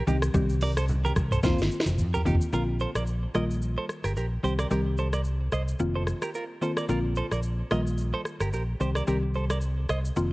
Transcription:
0.07 C2 D#3 G3 C4 D#4 G4, high conga, low conga, shaker
0.22 cross-stick, shaker
0.34 C2 D#3 G3 C4 G4, kick, low conga, shaker
0.49 shaker
0.61 A#4 D5, open hi-hat, high conga, shaker
0.77 A4 C5, cross-stick, shaker
0.88 low conga, shaker
1.04 G4 A#4, high conga, shaker
1.16 C2, kick, cross-stick, high conga, shaker
1.31 A4 C5, mid tom, shaker
1.43 F1 D#3 A#3 C4 F4 C5, kick, snare, low conga, shaker
1.58 G1, snare, shaker
1.71 shaker
1.80 snare
1.86 F1, high conga, shaker
1.98 F2, mid tom, shaker
2.14 G4 A#4, floor tom, shaker
2.25 F1 D#3 A#3 C4 D#4 F4 G4, high conga, low conga, shaker
2.35 floor tom
2.41 shaker
2.52 A#1 D3 A#3 C4 F4 A#4, shaker
2.79 A4 C5, shaker
2.95 A#1 A#4 D5, cross-stick, shaker
3.06 shaker
3.34 A#1 D#3 G3 A#3 F4 A#4 D#5, cross-stick, shaker
3.50 shaker
3.62 shaker
3.78 A4 C5
3.89 cross-stick, shaker
4.04 G1 G4 A#4, cross-stick, shaker
4.16 A#1 G4 A#4, shaker
4.43 C2 D#3 G3 C4 G4 C5, shaker
4.59 A#4 D5, cross-stick, shaker
4.71 C2 D#3 G3 C4 G4 A#4, shaker
4.97 A4 C5, shaker
5.13 A#4 D5, cross-stick, shaker
5.24 shaker
5.53 C2 C5 D#5, cross-stick, shaker
5.68 shaker
5.80 F1 D#3 A#3 C4 F4, shaker
5.96 A4 C5
6.07 cross-stick, shaker
6.22 G4 A#4, cross-stick, shaker
6.35 F4 A#4, shaker
6.62 D#3 A#3 C4 F4 A4 C5, shaker
6.77 A#4 D5, cross-stick, shaker
6.89 A#1 D3 A#3 C4 F4 A#4, shaker
7.16 A4 C5, shaker
7.31 A#1 A#4 D5, cross-stick, shaker
7.43 shaker
7.71 A#1 D#3 G3 A#3 F4 A#4 D#5, cross-stick, shaker
7.87 shaker
7.98 shaker
8.14 A4 C5
8.25 cross-stick, shaker
8.40 G1 G4 A#4, cross-stick, shaker
8.53 A#1 G4 A#4, shaker
8.80 C2 D#3 G3 C4 G4 C5, shaker
8.95 A#4 D5, cross-stick, shaker
9.07 C2 D#3 G3 C4 G4 A#4, shaker
9.34 A4 C5, shaker
9.50 A#4 D5, cross-stick, shaker
9.61 shaker
9.89 C2 C5 D#5, cross-stick, shaker
10.05 shaker
10.16 F1 D#3 A#3 C4 F4, shaker

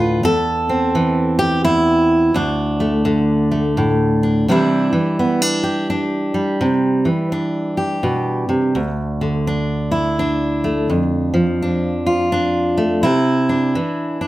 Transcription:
Already playing: D2 A2 D3 F4 B4
0.23 E2 A4
0.69 C4
0.95 E3
1.39 G4
1.65 E2 E4
2.34 D2 D4
2.80 A3
3.05 D3
3.51 A3
3.77 A2
4.23 D4
4.48 C3 E3 G3 D4 E4
4.93 E3
5.19 B3
5.42 D4
5.63 G4
5.90 D4
6.34 G3
6.61 C3
7.05 E3
7.32 D4
7.77 G4
8.03 B2
8.49 C3
8.75 D2
9.21 D3
9.47 D4
9.92 E4
10.19 D4
10.64 A3
10.89 F2
11.34 F3
11.62 D4
12.06 F4
12.32 D4
12.78 A3
13.03 C3 E4
13.49 D4
13.75 E3
14.21 D4

